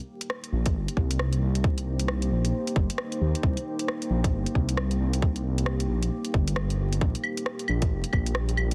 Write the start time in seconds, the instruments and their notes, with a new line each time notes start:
Already playing: ambient pad A#3 D#4 G4 C5
0.21 closed hi-hat
0.30 cross-stick
0.44 closed hi-hat
0.52 detuned saw bass A#1
0.66 kick, closed hi-hat
0.75 detuned saw bass G1
0.88 closed hi-hat
0.97 detuned saw bass C2, kick
1.11 closed hi-hat
1.19 cross-stick
1.33 closed hi-hat
1.42 detuned saw bass C2
1.55 closed hi-hat
1.64 kick
1.78 closed hi-hat
1.99 closed hi-hat
2.08 cross-stick
2.22 closed hi-hat
2.31 detuned saw bass A#1
2.45 closed hi-hat
2.67 closed hi-hat
2.76 detuned saw bass G1, kick
2.90 closed hi-hat
2.98 cross-stick
3.12 closed hi-hat
3.21 detuned saw bass D#2
3.35 closed hi-hat
3.43 detuned saw bass C2, kick
3.57 closed hi-hat
3.79 closed hi-hat
3.88 cross-stick
4.02 closed hi-hat
4.10 detuned saw bass A#1
4.24 kick, closed hi-hat
4.33 detuned saw bass G1
4.46 closed hi-hat
4.55 detuned saw bass C2, kick
4.69 closed hi-hat
4.77 cross-stick
4.91 closed hi-hat
5.00 detuned saw bass C2
5.13 closed hi-hat
5.22 kick
5.36 closed hi-hat
5.58 closed hi-hat
5.66 cross-stick
5.80 closed hi-hat
5.89 detuned saw bass A#1
6.03 closed hi-hat
6.25 closed hi-hat
6.34 detuned saw bass G1, kick
6.48 closed hi-hat
6.56 cross-stick
6.70 closed hi-hat
6.93 closed hi-hat
7.01 detuned saw bass A#1, ambient pad F4 D5, kick
7.15 closed hi-hat
7.23 claves
7.37 closed hi-hat
7.46 cross-stick
7.59 closed hi-hat
7.68 detuned saw bass A#1, claves
7.82 kick, closed hi-hat
7.91 detuned saw bass F1
8.04 closed hi-hat
8.13 detuned saw bass A#1, kick, claves
8.26 closed hi-hat
8.35 cross-stick
8.49 closed hi-hat
8.57 detuned saw bass A#1, claves
8.71 closed hi-hat